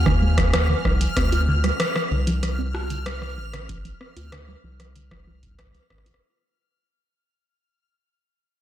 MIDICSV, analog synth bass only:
0, 0, Header, 1, 2, 480
1, 0, Start_track
1, 0, Tempo, 631579
1, 885, Time_signature, 4, 2, 24, 8
1, 6544, End_track
2, 0, Start_track
2, 0, Title_t, "Analog synth bass"
2, 0, Program_c, 0, 38
2, 0, Note_on_c, 0, 39, 91
2, 402, Note_off_c, 0, 39, 0
2, 407, Note_on_c, 0, 39, 81
2, 569, Note_off_c, 0, 39, 0
2, 647, Note_on_c, 0, 36, 99
2, 809, Note_off_c, 0, 36, 0
2, 886, Note_on_c, 0, 38, 96
2, 1305, Note_off_c, 0, 38, 0
2, 1607, Note_on_c, 0, 36, 91
2, 2566, Note_on_c, 0, 33, 90
2, 2578, Note_off_c, 0, 36, 0
2, 2985, Note_off_c, 0, 33, 0
2, 3167, Note_on_c, 0, 38, 85
2, 3465, Note_off_c, 0, 38, 0
2, 3526, Note_on_c, 0, 36, 90
2, 4242, Note_off_c, 0, 36, 0
2, 4247, Note_on_c, 0, 36, 77
2, 4409, Note_off_c, 0, 36, 0
2, 4486, Note_on_c, 0, 33, 95
2, 4649, Note_off_c, 0, 33, 0
2, 6544, End_track
0, 0, End_of_file